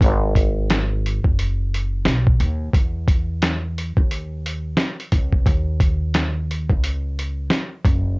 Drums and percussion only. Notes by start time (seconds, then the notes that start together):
0.01 kick, closed hi-hat
0.35 kick, closed hi-hat
0.70 finger snap, snare, closed hi-hat
1.06 closed hi-hat
1.24 kick
1.39 closed hi-hat
1.74 closed hi-hat
2.05 finger snap, snare, closed hi-hat
2.27 kick
2.40 closed hi-hat
2.73 kick, closed hi-hat
3.08 kick, closed hi-hat
3.42 finger snap, snare, closed hi-hat
3.78 closed hi-hat
3.97 kick
4.11 closed hi-hat
4.46 closed hi-hat
4.77 finger snap, snare, closed hi-hat
5.00 closed hi-hat
5.12 kick, closed hi-hat
5.33 kick
5.46 kick, closed hi-hat
5.80 kick, closed hi-hat
6.14 finger snap, snare, closed hi-hat
6.51 closed hi-hat
6.70 kick
6.84 closed hi-hat
7.19 closed hi-hat
7.50 finger snap, snare, closed hi-hat
7.85 kick, closed hi-hat